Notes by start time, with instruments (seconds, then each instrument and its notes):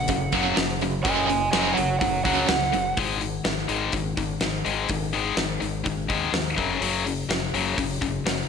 Already playing: electric slide guitar F#5
0.08 fingered electric bass F#1, distorted electric guitar F#2 C#3, kick, open hi-hat
0.32 fingered electric bass F#1, distorted electric guitar F#2 C#3 F#3, kick, open hi-hat
0.57 fingered electric bass F#1, distorted electric guitar F#2 C#3, snare, open hi-hat
0.81 distorted electric guitar F#2 C#3, open hi-hat
1.03 fingered electric bass F#1, distorted electric guitar F#2 C#3 F#3, electric slide guitar D#5 G#5, kick, open hi-hat
1.27 distorted electric guitar F#2 C#3, electric slide guitar D#5 G#5, open hi-hat
1.51 fingered electric bass F#1, distorted electric guitar F#2 C#3 F#3, electric slide guitar D#5 G#5, snare, open hi-hat
1.74 fingered electric bass F#1, distorted electric guitar F#2 C#3, electric slide guitar C#5 F#5, open hi-hat
1.99 fingered electric bass F#1, distorted electric guitar F#2 C#3, electric slide guitar C#5 F#5, kick, open hi-hat
2.24 fingered electric bass C#2, distorted electric guitar F#2 C#3 F#3, electric slide guitar C#5 F#5, kick, open hi-hat
2.48 fingered electric bass C#2, distorted electric guitar F#2 C#3, electric slide guitar F#5, snare, open hi-hat
2.72 fingered electric bass F#1, distorted electric guitar F#2 C#3, open hi-hat
2.97 fingered electric bass G#1, distorted electric guitar G#2 D#3 G#3, kick, open hi-hat
3.21 distorted electric guitar G#2 D#3, open hi-hat
3.44 fingered electric bass G#1, distorted electric guitar G#2 D#3, snare, open hi-hat
3.68 fingered electric bass G#1, distorted electric guitar G#2 D#3 G#3, open hi-hat
3.92 fingered electric bass G#1, distorted electric guitar G#2 D#3, kick, open hi-hat
4.17 fingered electric bass G#1, distorted electric guitar G#2 D#3, kick, open hi-hat
4.41 fingered electric bass G#1, distorted electric guitar G#2 D#3, snare, open hi-hat
4.65 fingered electric bass G#1, distorted electric guitar G#2 D#3 G#3, open hi-hat
4.89 fingered electric bass G#1, distorted electric guitar G#2 D#3, kick, open hi-hat
5.13 distorted electric guitar G#2 D#3 G#3, open hi-hat
5.36 fingered electric bass G#1, distorted electric guitar G#2 D#3, snare, open hi-hat
5.60 fingered electric bass G#1, distorted electric guitar G#2 D#3, open hi-hat
5.84 fingered electric bass G#1, distorted electric guitar G#2 D#3, kick, open hi-hat
6.08 fingered electric bass D#2, distorted electric guitar G#2 D#3 G#3, kick, open hi-hat
6.32 fingered electric bass D#2, distorted electric guitar G#2 D#3, snare, open hi-hat
6.56 fingered electric bass F#1, distorted electric guitar F#2 C#3 F#3, kick, open hi-hat
6.81 fingered electric bass F#1, distorted electric guitar F#2 C#3 F#3, open hi-hat
7.05 distorted electric guitar F#2 C#3, open hi-hat
7.28 fingered electric bass F#1, distorted electric guitar F#2 C#3, snare, open hi-hat
7.53 fingered electric bass F#1, distorted electric guitar F#2 C#3 F#3, open hi-hat
7.78 fingered electric bass F#1, distorted electric guitar F#2 C#3, kick, open hi-hat
8.01 fingered electric bass F#1, distorted electric guitar F#2 C#3, kick, open hi-hat
8.24 fingered electric bass F#1, distorted electric guitar F#2 C#3, snare, open hi-hat